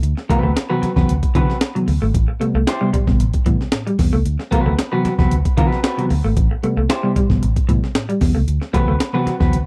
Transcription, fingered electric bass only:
0.02 0.13 D2 loud
0.43 0.52 D2 medium
0.82 muted fingered electric bass stroke soft
0.96 1.05 E2 medium
1.08 1.19 D2 medium
1.35 1.45 D3 loud
1.88 1.98 D2 medium
2.02 2.11 G#1 medium
2.14 2.25 A1 loud
2.54 2.64 C2 medium
2.93 muted fingered electric bass stroke soft
3.07 3.17 A1 medium
3.20 3.30 A1 medium
3.46 3.57 A2 loud
3.99 4.09 E2 medium
4.13 4.22 C#2 medium
4.25 4.36 D2 medium
4.66 4.75 D2 medium
5.05 muted fingered electric bass stroke soft
5.19 5.28 E2 medium
5.30 5.41 D2 medium
5.58 5.68 D3 loud
6.10 6.21 D2 medium
6.24 6.33 G#1 medium
6.37 6.47 A1 loud
6.77 6.86 C2 medium
7.16 muted fingered electric bass stroke soft
7.30 7.39 A1 medium
7.42 7.52 A1 medium
7.69 7.79 A2 loud
8.21 8.31 E2 loud
8.35 8.44 C#2 medium
8.48 8.58 D2 medium
8.88 8.97 D2 medium
9.26 muted fingered electric bass stroke soft
9.41 9.52 E2 medium
9.52 9.63 D2 medium

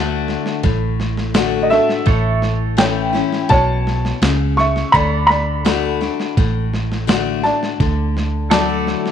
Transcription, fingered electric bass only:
0.00 0.35 D2 loud
0.64 1.78 A1 medium
2.07 3.21 A1 medium
3.51 4.11 B1 medium
4.22 4.83 C#2 medium
4.94 6.08 D2 medium
6.37 7.51 A1 medium
7.80 8.94 D2 medium

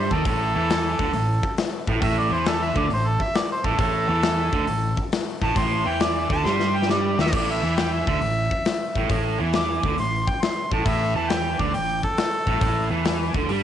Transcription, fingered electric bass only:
0.11 0.24 D#2 medium
0.25 0.53 A1 loud
0.56 0.97 E2 medium
0.99 1.12 D2 medium
1.13 1.41 A1 medium
1.88 2.01 A1 medium
2.02 2.30 A1 medium
2.31 2.73 E2 medium
2.76 2.89 D2 loud
2.91 3.19 A1 medium
3.64 3.78 A1 loud
3.79 4.07 A1 loud
4.08 4.50 E2 loud
4.53 4.66 D2 medium
4.67 4.95 A1 medium
5.42 5.55 A1 medium
5.56 5.84 A1 loud
5.86 6.27 E2 medium
6.30 6.44 D2 medium
6.45 7.15 G2 medium
7.19 7.32 D#2 medium
7.33 7.61 A1 loud
7.63 8.04 E2 medium
8.07 8.20 D2 medium
8.22 8.50 A1 medium
8.96 9.09 A1 medium
9.10 9.37 A1 medium
9.40 9.81 E2 medium
9.83 9.97 D2 medium
9.98 10.26 A1 medium
10.71 10.85 A1 medium
10.86 11.13 A1 loud
11.15 11.56 E2 medium
11.59 11.72 D2 medium
11.74 12.01 A1 medium
12.47 12.60 A1 medium
12.61 12.89 A1 medium
12.91 13.32 E2 medium
13.34 13.48 D2 medium
13.49 13.63 G2 medium

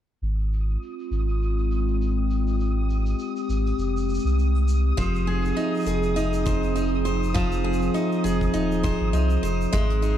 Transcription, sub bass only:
0.22 0.77 G#1 medium
1.11 3.14 G#1 medium
3.49 3.72 G#1 medium
3.78 4.18 F1 medium
4.24 4.92 C2 medium
4.98 5.52 F1 medium
5.86 7.89 F1 medium
8.24 8.48 F1 medium
8.54 8.94 D#1 medium
9.01 9.13 G#1 medium
9.14 9.37 C2 medium
9.42 9.66 F1 medium
9.73 10.18 G#1 medium

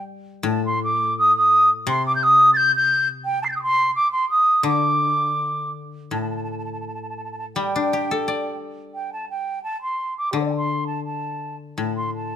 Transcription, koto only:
0.00 1.18 G3 medium
0.43 1.88 A2 medium
1.87 3.95 C3 medium
4.63 6.85 D3 medium
6.11 8.26 A2 soft
7.56 9.64 G3 soft
7.76 9.13 D4 soft
7.93 9.30 G4 soft
8.11 9.48 A4 soft
8.28 9.65 D5 soft
10.33 12.36 D3 soft
11.78 12.36 A2 soft

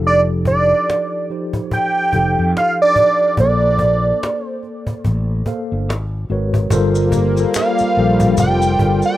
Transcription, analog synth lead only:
0.07 0.21 D5 loud
0.47 1.26 D5 loud
1.73 2.51 G5 loud
2.58 2.79 F5 medium
2.82 3.35 D5 medium
3.40 4.47 D5 medium
4.47 5.01 C5 medium
7.57 8.35 F5 loud
8.40 9.01 G5 loud
9.06 9.17 G5 loud

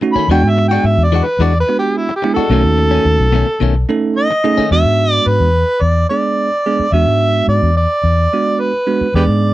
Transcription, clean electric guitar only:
0.02 muted clean electric guitar stroke soft
0.16 0.29 D#3 medium
0.16 0.30 A3 soft
0.16 0.30 C#4 medium
0.29 0.44 E3 medium
0.29 0.44 G#3 medium
0.29 0.44 D4 medium
0.29 0.43 F#4 medium
0.44 muted clean electric guitar stroke medium
0.57 muted clean electric guitar stroke soft
0.71 0.85 G#3 soft
0.71 0.85 D4 medium
0.71 0.85 F#4 medium
0.85 muted clean electric guitar stroke soft
1.12 1.27 E3 medium
1.12 1.27 G#3 medium
1.12 1.26 D4 medium
1.12 1.25 F#4 medium
1.26 muted clean electric guitar stroke soft
1.40 1.54 E3 medium
1.40 1.55 G#3 medium
1.40 1.54 D4 medium
1.40 1.53 F#4 medium
1.68 muted clean electric guitar stroke soft
2.09 muted clean electric guitar stroke soft
2.22 muted clean electric guitar stroke soft
2.36 2.52 G#3 soft
2.36 2.51 D4 medium
2.36 2.50 F#4 medium
2.50 2.65 B2 medium
2.50 2.65 D#3 medium
2.50 2.64 A3 medium
2.50 2.63 C#4 medium
2.64 muted clean electric guitar stroke soft
2.78 muted clean electric guitar stroke soft
2.91 3.05 D#3 medium
2.91 3.05 A3 medium
2.91 3.05 C#4 medium
3.05 muted clean electric guitar stroke soft
3.33 3.48 B2 medium
3.33 3.48 D#3 medium
3.33 3.47 A3 medium
3.33 3.46 C#4 medium
3.48 muted clean electric guitar stroke medium
3.60 3.75 B2 medium
3.60 3.76 D#3 medium
3.60 3.75 A3 medium
3.60 3.74 C#4 medium
3.76 muted clean electric guitar stroke soft
3.89 muted clean electric guitar stroke soft
4.31 muted clean electric guitar stroke medium
4.44 muted clean electric guitar stroke soft
4.58 4.73 D#3 soft
4.58 4.73 A3 medium
4.58 4.72 C#4 medium

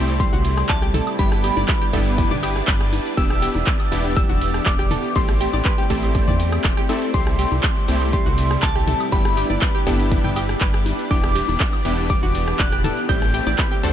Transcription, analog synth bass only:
0.00 0.27 C2 medium
0.33 0.64 C2 loud
0.69 1.01 C2 loud
1.19 1.51 G1 loud
1.57 1.65 G1 medium
1.93 2.25 G1 medium
2.31 2.62 G1 loud
2.68 3.00 G1 loud
3.17 3.49 E1 loud
3.55 3.64 E1 medium
3.92 4.24 E1 medium
4.29 4.61 E1 loud
4.66 4.98 E1 loud
5.16 5.48 A1 loud
5.53 5.62 A1 medium
5.90 6.22 A1 medium
6.28 6.59 E2 medium
6.65 6.74 E1 medium
7.14 7.46 C2 loud
7.52 7.60 C2 medium
7.88 8.20 C2 medium
8.26 8.57 C2 loud
8.63 8.95 C2 loud
9.12 9.44 G1 loud
9.50 9.59 G1 medium
9.87 10.19 G1 medium
10.24 10.56 G1 loud
10.61 10.93 G1 loud
11.11 11.43 E1 loud
11.48 11.57 E1 medium
11.85 12.17 E1 medium
12.23 12.54 E1 loud
12.59 12.91 E1 loud
13.09 13.41 A1 loud
13.47 13.55 A1 loud
13.83 13.93 D2 medium

